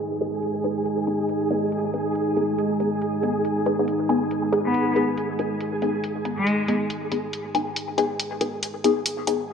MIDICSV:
0, 0, Header, 1, 7, 480
1, 0, Start_track
1, 0, Key_signature, 5, "minor"
1, 0, Tempo, 431655
1, 954, Time_signature, 4, 2, 24, 8
1, 10598, End_track
2, 0, Start_track
2, 0, Title_t, "Synth texture"
2, 0, Program_c, 0, 99
2, 0, Note_on_c, 0, 68, 82
2, 10554, Note_off_c, 0, 68, 0
2, 10598, End_track
3, 0, Start_track
3, 0, Title_t, "Synth stab"
3, 0, Program_c, 1, 62
3, 230, Note_on_c, 1, 63, 72
3, 231, Note_on_c, 1, 59, 79
3, 232, Note_on_c, 1, 68, 86
3, 378, Note_off_c, 1, 59, 0
3, 378, Note_off_c, 1, 63, 0
3, 379, Note_off_c, 1, 68, 0
3, 713, Note_on_c, 1, 59, 76
3, 713, Note_on_c, 1, 63, 73
3, 713, Note_on_c, 1, 68, 86
3, 859, Note_off_c, 1, 59, 0
3, 859, Note_off_c, 1, 63, 0
3, 859, Note_off_c, 1, 68, 0
3, 1192, Note_on_c, 1, 59, 76
3, 1192, Note_on_c, 1, 63, 71
3, 1193, Note_on_c, 1, 68, 84
3, 1339, Note_off_c, 1, 59, 0
3, 1339, Note_off_c, 1, 63, 0
3, 1339, Note_off_c, 1, 68, 0
3, 1673, Note_on_c, 1, 59, 81
3, 1673, Note_on_c, 1, 63, 70
3, 1675, Note_on_c, 1, 68, 87
3, 1877, Note_off_c, 1, 59, 0
3, 1877, Note_off_c, 1, 63, 0
3, 1878, Note_off_c, 1, 68, 0
3, 2154, Note_on_c, 1, 68, 85
3, 2155, Note_on_c, 1, 59, 77
3, 2155, Note_on_c, 1, 63, 69
3, 2300, Note_off_c, 1, 63, 0
3, 2300, Note_off_c, 1, 68, 0
3, 2301, Note_off_c, 1, 59, 0
3, 2631, Note_on_c, 1, 63, 72
3, 2632, Note_on_c, 1, 59, 80
3, 2632, Note_on_c, 1, 68, 89
3, 2778, Note_off_c, 1, 63, 0
3, 2779, Note_off_c, 1, 59, 0
3, 2779, Note_off_c, 1, 68, 0
3, 3114, Note_on_c, 1, 68, 83
3, 3115, Note_on_c, 1, 59, 74
3, 3115, Note_on_c, 1, 63, 72
3, 3260, Note_off_c, 1, 59, 0
3, 3260, Note_off_c, 1, 63, 0
3, 3260, Note_off_c, 1, 68, 0
3, 3593, Note_on_c, 1, 59, 78
3, 3593, Note_on_c, 1, 63, 71
3, 3594, Note_on_c, 1, 68, 86
3, 3797, Note_off_c, 1, 59, 0
3, 3797, Note_off_c, 1, 63, 0
3, 3798, Note_off_c, 1, 68, 0
3, 4073, Note_on_c, 1, 59, 75
3, 4073, Note_on_c, 1, 63, 67
3, 4073, Note_on_c, 1, 68, 83
3, 4196, Note_off_c, 1, 63, 0
3, 4197, Note_off_c, 1, 59, 0
3, 4197, Note_off_c, 1, 68, 0
3, 4217, Note_on_c, 1, 59, 78
3, 4218, Note_on_c, 1, 63, 69
3, 4218, Note_on_c, 1, 68, 85
3, 4315, Note_off_c, 1, 59, 0
3, 4316, Note_off_c, 1, 63, 0
3, 4316, Note_off_c, 1, 68, 0
3, 4550, Note_on_c, 1, 68, 105
3, 4551, Note_on_c, 1, 59, 93
3, 4551, Note_on_c, 1, 63, 83
3, 4698, Note_off_c, 1, 59, 0
3, 4698, Note_off_c, 1, 63, 0
3, 4698, Note_off_c, 1, 68, 0
3, 5031, Note_on_c, 1, 59, 78
3, 5031, Note_on_c, 1, 63, 72
3, 5031, Note_on_c, 1, 68, 86
3, 5178, Note_off_c, 1, 59, 0
3, 5178, Note_off_c, 1, 63, 0
3, 5178, Note_off_c, 1, 68, 0
3, 5511, Note_on_c, 1, 63, 73
3, 5512, Note_on_c, 1, 59, 80
3, 5512, Note_on_c, 1, 68, 86
3, 5716, Note_off_c, 1, 63, 0
3, 5717, Note_off_c, 1, 59, 0
3, 5717, Note_off_c, 1, 68, 0
3, 5993, Note_on_c, 1, 59, 78
3, 5993, Note_on_c, 1, 68, 86
3, 5994, Note_on_c, 1, 63, 72
3, 6139, Note_off_c, 1, 59, 0
3, 6139, Note_off_c, 1, 68, 0
3, 6140, Note_off_c, 1, 63, 0
3, 6472, Note_on_c, 1, 59, 78
3, 6472, Note_on_c, 1, 63, 72
3, 6473, Note_on_c, 1, 68, 88
3, 6619, Note_off_c, 1, 59, 0
3, 6619, Note_off_c, 1, 63, 0
3, 6619, Note_off_c, 1, 68, 0
3, 6951, Note_on_c, 1, 68, 85
3, 6952, Note_on_c, 1, 59, 78
3, 6952, Note_on_c, 1, 63, 71
3, 7098, Note_off_c, 1, 68, 0
3, 7099, Note_off_c, 1, 59, 0
3, 7099, Note_off_c, 1, 63, 0
3, 7432, Note_on_c, 1, 59, 82
3, 7432, Note_on_c, 1, 63, 76
3, 7432, Note_on_c, 1, 68, 86
3, 7637, Note_off_c, 1, 59, 0
3, 7637, Note_off_c, 1, 63, 0
3, 7637, Note_off_c, 1, 68, 0
3, 7912, Note_on_c, 1, 63, 70
3, 7912, Note_on_c, 1, 68, 87
3, 7913, Note_on_c, 1, 59, 78
3, 8059, Note_off_c, 1, 59, 0
3, 8059, Note_off_c, 1, 63, 0
3, 8059, Note_off_c, 1, 68, 0
3, 8391, Note_on_c, 1, 59, 78
3, 8391, Note_on_c, 1, 63, 75
3, 8392, Note_on_c, 1, 68, 89
3, 8538, Note_off_c, 1, 59, 0
3, 8538, Note_off_c, 1, 63, 0
3, 8539, Note_off_c, 1, 68, 0
3, 8871, Note_on_c, 1, 59, 77
3, 8872, Note_on_c, 1, 63, 70
3, 8872, Note_on_c, 1, 68, 88
3, 9018, Note_off_c, 1, 59, 0
3, 9019, Note_off_c, 1, 63, 0
3, 9019, Note_off_c, 1, 68, 0
3, 9350, Note_on_c, 1, 68, 89
3, 9351, Note_on_c, 1, 59, 81
3, 9351, Note_on_c, 1, 63, 72
3, 9556, Note_off_c, 1, 59, 0
3, 9556, Note_off_c, 1, 68, 0
3, 9557, Note_off_c, 1, 63, 0
3, 9832, Note_on_c, 1, 63, 72
3, 9833, Note_on_c, 1, 59, 78
3, 9833, Note_on_c, 1, 68, 86
3, 9979, Note_off_c, 1, 59, 0
3, 9979, Note_off_c, 1, 63, 0
3, 9979, Note_off_c, 1, 68, 0
3, 10311, Note_on_c, 1, 68, 85
3, 10312, Note_on_c, 1, 59, 80
3, 10312, Note_on_c, 1, 63, 72
3, 10458, Note_off_c, 1, 63, 0
3, 10458, Note_off_c, 1, 68, 0
3, 10459, Note_off_c, 1, 59, 0
3, 10598, End_track
4, 0, Start_track
4, 0, Title_t, "Ambient pad"
4, 0, Program_c, 2, 92
4, 0, Note_on_c, 2, 56, 71
4, 0, Note_on_c, 2, 63, 72
4, 10556, Note_off_c, 2, 56, 0
4, 10556, Note_off_c, 2, 63, 0
4, 10598, End_track
5, 0, Start_track
5, 0, Title_t, "Cello"
5, 0, Program_c, 3, 42
5, 5181, Note_on_c, 3, 59, 82
5, 5515, Note_off_c, 3, 59, 0
5, 7098, Note_on_c, 3, 56, 84
5, 7434, Note_off_c, 3, 56, 0
5, 10598, End_track
6, 0, Start_track
6, 0, Title_t, "Downlifter"
6, 0, Program_c, 4, 103
6, 0, Note_on_c, 4, 60, 66
6, 954, Note_off_c, 4, 60, 0
6, 10598, End_track
7, 0, Start_track
7, 0, Title_t, "Drums"
7, 238, Note_on_c, 9, 42, 48
7, 349, Note_off_c, 9, 42, 0
7, 475, Note_on_c, 9, 42, 70
7, 586, Note_off_c, 9, 42, 0
7, 716, Note_on_c, 9, 42, 47
7, 827, Note_off_c, 9, 42, 0
7, 953, Note_on_c, 9, 42, 69
7, 1064, Note_off_c, 9, 42, 0
7, 1194, Note_on_c, 9, 42, 44
7, 1305, Note_off_c, 9, 42, 0
7, 1435, Note_on_c, 9, 42, 71
7, 1546, Note_off_c, 9, 42, 0
7, 1674, Note_on_c, 9, 42, 47
7, 1785, Note_off_c, 9, 42, 0
7, 1915, Note_on_c, 9, 42, 70
7, 2026, Note_off_c, 9, 42, 0
7, 2154, Note_on_c, 9, 42, 46
7, 2265, Note_off_c, 9, 42, 0
7, 2394, Note_on_c, 9, 42, 68
7, 2505, Note_off_c, 9, 42, 0
7, 2634, Note_on_c, 9, 42, 46
7, 2745, Note_off_c, 9, 42, 0
7, 2875, Note_on_c, 9, 42, 69
7, 2986, Note_off_c, 9, 42, 0
7, 3114, Note_on_c, 9, 42, 44
7, 3226, Note_off_c, 9, 42, 0
7, 3354, Note_on_c, 9, 42, 68
7, 3465, Note_off_c, 9, 42, 0
7, 3594, Note_on_c, 9, 42, 46
7, 3705, Note_off_c, 9, 42, 0
7, 3833, Note_on_c, 9, 42, 69
7, 3944, Note_off_c, 9, 42, 0
7, 4072, Note_on_c, 9, 42, 45
7, 4183, Note_off_c, 9, 42, 0
7, 4312, Note_on_c, 9, 42, 67
7, 4424, Note_off_c, 9, 42, 0
7, 4553, Note_on_c, 9, 42, 44
7, 4664, Note_off_c, 9, 42, 0
7, 4793, Note_on_c, 9, 42, 67
7, 4904, Note_off_c, 9, 42, 0
7, 5034, Note_on_c, 9, 42, 43
7, 5145, Note_off_c, 9, 42, 0
7, 5273, Note_on_c, 9, 42, 68
7, 5385, Note_off_c, 9, 42, 0
7, 5516, Note_on_c, 9, 42, 45
7, 5627, Note_off_c, 9, 42, 0
7, 5754, Note_on_c, 9, 42, 71
7, 5865, Note_off_c, 9, 42, 0
7, 5993, Note_on_c, 9, 42, 45
7, 6105, Note_off_c, 9, 42, 0
7, 6233, Note_on_c, 9, 42, 69
7, 6344, Note_off_c, 9, 42, 0
7, 6472, Note_on_c, 9, 42, 44
7, 6583, Note_off_c, 9, 42, 0
7, 6713, Note_on_c, 9, 42, 71
7, 6824, Note_off_c, 9, 42, 0
7, 6952, Note_on_c, 9, 42, 47
7, 7063, Note_off_c, 9, 42, 0
7, 7192, Note_on_c, 9, 42, 74
7, 7303, Note_off_c, 9, 42, 0
7, 7432, Note_on_c, 9, 42, 49
7, 7543, Note_off_c, 9, 42, 0
7, 7673, Note_on_c, 9, 42, 75
7, 7784, Note_off_c, 9, 42, 0
7, 7913, Note_on_c, 9, 42, 49
7, 8024, Note_off_c, 9, 42, 0
7, 8153, Note_on_c, 9, 42, 70
7, 8264, Note_off_c, 9, 42, 0
7, 8393, Note_on_c, 9, 42, 46
7, 8504, Note_off_c, 9, 42, 0
7, 8633, Note_on_c, 9, 42, 73
7, 8744, Note_off_c, 9, 42, 0
7, 8874, Note_on_c, 9, 42, 49
7, 8985, Note_off_c, 9, 42, 0
7, 9113, Note_on_c, 9, 42, 78
7, 9224, Note_off_c, 9, 42, 0
7, 9351, Note_on_c, 9, 42, 50
7, 9462, Note_off_c, 9, 42, 0
7, 9593, Note_on_c, 9, 42, 77
7, 9704, Note_off_c, 9, 42, 0
7, 9834, Note_on_c, 9, 42, 48
7, 9945, Note_off_c, 9, 42, 0
7, 10072, Note_on_c, 9, 42, 73
7, 10183, Note_off_c, 9, 42, 0
7, 10312, Note_on_c, 9, 42, 49
7, 10423, Note_off_c, 9, 42, 0
7, 10598, End_track
0, 0, End_of_file